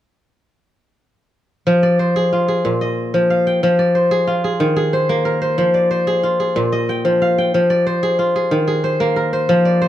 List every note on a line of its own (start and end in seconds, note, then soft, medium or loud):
1.67 2.70 F3 medium
1.83 2.87 D5 medium
1.99 3.18 C5 medium
2.16 2.48 G#4 medium
2.33 3.84 F4 medium
2.48 3.53 G#4 medium
2.65 3.68 A#2 medium
2.81 3.85 D#5 medium
3.14 3.62 F3 medium
3.30 4.30 F5 medium
3.47 4.17 G5 medium
3.63 4.65 F3 medium
3.79 4.66 D5 medium
3.95 4.93 C5 medium
4.11 4.44 G#4 medium
4.27 5.79 F4 medium
4.44 4.76 G#4 medium
4.60 5.63 D#3 medium
4.76 6.07 G#4 medium
4.93 5.41 C5 medium
5.09 7.02 A#3 medium
5.25 6.52 A#4 medium
5.42 5.90 C5 medium
5.58 6.61 F3 medium
5.74 6.78 D5 medium
5.91 7.09 C5 medium
6.07 6.39 G#4 medium
6.23 7.75 F4 medium
6.40 6.95 G#4 medium
6.56 7.59 A#2 medium
6.72 7.76 D#5 medium
6.89 7.38 G5 medium
7.05 7.53 F3 medium
7.22 8.22 F5 medium
7.38 8.09 G5 medium
7.54 8.56 F3 medium
7.70 8.57 D5 medium
7.87 8.83 C5 medium
8.03 8.35 G#4 medium
8.19 9.70 F4 medium
8.36 8.67 G#4 medium
8.51 9.54 D#3 medium
8.68 9.88 G#4 medium
8.84 9.32 C5 medium
9.00 9.88 A#3 medium
9.16 9.88 A#4 medium
9.33 9.81 C5 medium
9.49 9.88 F3 medium
9.65 9.88 D5 medium
9.82 9.88 C5 medium